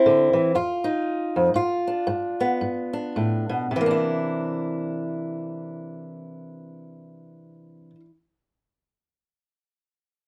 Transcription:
Already playing: C4 E4
0.06 D3
0.33 E3
0.55 F2 F4
0.84 D#4
1.36 F2
1.54 G2 F4
1.87 D4
2.07 G2
2.40 B3
2.61 G2
2.93 D4
3.16 A2
3.49 B2
3.71 C3
3.76 E3
3.81 A#3
3.86 D4
3.91 E4

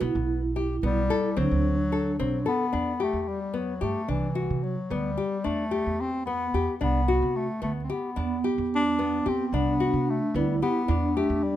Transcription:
0.00 B1 B3 E4
0.15 B1
0.56 G4
0.83 B1 G3 B3
1.10 A4
1.37 D2 F#3 C4
1.41 D4
1.51 D2
1.92 A4
2.19 B1 F#3 C4
2.46 B3 A4
2.73 E2 D4
3.00 A3 G4
3.13 E2
3.21 A3
3.28 G3
3.54 F#3 B3
3.81 G2 A3 G4
4.08 C2 E3 D4
4.35 F#4
4.50 C3
4.63 F#3
4.90 D2 G3 B3
5.17 G4
5.44 E2 A3 D4
5.71 G4
5.86 E2
6.00 C4
6.26 B3
6.54 E2 G4
6.81 C2 B3 D4
7.08 F#4
7.22 C3
7.36 A3
7.62 D2 A3 B3
7.84 C4
7.90 B3 G4
8.16 E2 B3 D4
8.44 G4
8.58 E2
8.75 D4
8.99 B3
9.26 E2 C4 G4
9.46 C4
9.53 C2 B3 D4
9.80 F#4
9.93 C3
10.10 A3
10.34 D2 G3 B3 E4
10.62 B3 G4
10.88 E2 D4
11.17 A3 G4
11.30 E2
11.44 G3

